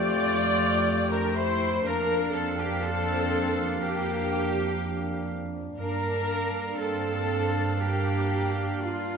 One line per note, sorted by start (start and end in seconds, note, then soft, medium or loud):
0.00 1.84 F2 medium
0.00 1.68 A3 medium
0.00 1.88 A3 medium
0.00 1.11 F4 loud
0.00 1.68 G4 medium
0.00 1.09 D5 loud
0.00 1.11 D5 loud
0.00 1.12 D5 loud
0.00 1.80 G5 medium
0.00 1.14 D6 loud
1.10 1.36 D4 medium
1.10 1.35 A#4 medium
1.10 1.36 A#4 medium
1.10 1.37 A#4 medium
1.10 1.38 A#5 medium
1.35 1.85 E4 medium
1.35 1.85 C5 medium
1.35 1.85 C5 loud
1.35 1.86 C5 medium
1.35 1.85 C6 medium
1.83 5.76 F2 medium
1.83 5.76 A#3 medium
1.83 2.32 D4 medium
1.83 5.80 D4 medium
1.83 2.32 A#4 loud
1.83 2.34 A#4 loud
1.83 2.33 A#4 medium
1.83 2.33 A#5 medium
1.87 5.53 D4 medium
1.87 5.49 F5 medium
2.33 2.58 C4 medium
2.33 2.58 A4 medium
2.33 2.59 A4 medium
2.33 2.61 A5 medium
2.57 2.82 A#3 medium
2.57 2.82 G4 medium
2.57 2.83 G4 medium
2.57 2.85 G5 medium
2.82 3.81 C4 medium
2.82 3.81 A4 medium
2.82 3.82 A4 loud
2.82 3.82 A4 medium
2.82 3.54 A5 medium
3.81 5.27 A#3 medium
3.81 5.30 G4 medium
3.81 5.27 G5 medium
5.78 9.17 G2 medium
5.78 6.75 D4 medium
5.78 9.17 D4 medium
5.78 6.76 A#4 medium
5.78 9.17 F5 medium
5.78 6.81 A#5 medium
5.82 9.17 A#3 medium
6.79 7.81 C4 medium
6.79 7.80 A4 medium
6.79 7.81 A4 medium
6.79 7.81 A5 medium
7.81 8.81 A#3 medium
7.81 8.83 G4 medium
7.81 8.81 G4 medium
7.81 8.85 G5 medium
8.82 9.17 A#3 medium
8.82 9.17 F4 medium
8.82 9.17 F5 medium